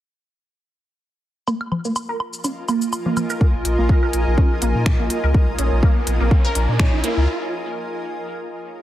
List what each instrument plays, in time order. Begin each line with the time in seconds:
1.47 synth pluck A#3, ambient pad F4, cabasa, low woodblock
1.61 high woodblock
1.66 ambient pad A#4
1.72 low conga, low woodblock
1.85 synth pluck A#3, cabasa
1.96 cabasa, low woodblock
2.01 ambient pad D#5
2.09 synth pluck A#4
2.16 ambient pad G#5, low woodblock
2.33 cabasa
2.44 synth pluck C#4, cabasa, low woodblock
2.68 synth pluck A#3, cabasa, low woodblock
2.82 cabasa
2.93 cabasa, low woodblock
3.06 synth pluck A#3, low conga
3.17 low conga, cabasa, high woodblock, low woodblock
3.30 synth pluck A#4, cabasa
3.41 synth pluck A#3, kick, riser
3.54 sub bass A#1
3.65 sub bass A#1, open hi-hat
3.78 sub bass A#1, synth pluck A#3
3.89 kick
4.03 synth pluck A#4
4.13 sub bass A#1, open hi-hat
4.27 sub bass A#1
4.38 synth pluck C#4, kick
4.62 sub bass A#1, synth pluck A#3, open hi-hat
4.75 sub bass A#2
4.86 finger snap, kick
4.99 sub bass A#1, synth pluck A#3
5.10 open hi-hat
5.23 sub bass C#2, synth pluck A#4
5.34 kick
5.48 sub bass A#1
5.59 sub bass A#1, synth pluck C#4, open hi-hat
5.72 sub bass A#1
5.83 synth pluck A#3, kick
6.07 sub bass A#1, open hi-hat
6.20 sub bass A#1, synth pluck A#3
6.31 kick
6.45 synth pluck A#4
6.55 sub bass A#1, open hi-hat
6.69 sub bass A#2
6.79 synth pluck C#4, finger snap, kick
6.93 sub bass A#1
7.04 synth pluck A#3, open hi-hat
7.17 sub bass C#2